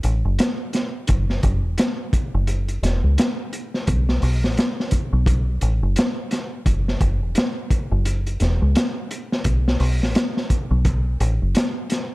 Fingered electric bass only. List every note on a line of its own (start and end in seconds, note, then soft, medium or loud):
0.04 0.22 A1 medium
0.25 0.37 F#1 medium
1.09 1.40 F#1 medium
1.44 1.64 F#1 loud
1.64 1.76 E1 medium
2.34 2.80 F#1 loud
2.83 3.01 E1 medium
3.04 3.16 C#2 medium
3.88 4.19 B1 medium
4.23 4.44 B1 medium
4.44 4.56 A1 medium
5.13 5.59 B1 medium
5.62 5.80 A1 medium
5.83 5.95 F#1 medium
6.66 6.98 F#1 medium
7.01 7.22 F#1 loud
7.22 7.35 E1 medium
7.92 8.38 F#1 medium
8.41 8.59 E1 medium
8.62 8.74 C#2 medium
9.45 9.77 B1 medium
9.80 10.01 B1 loud
10.01 10.14 A1 medium
10.71 11.17 B1 loud
11.21 11.39 A1 medium
11.42 11.54 F#1 medium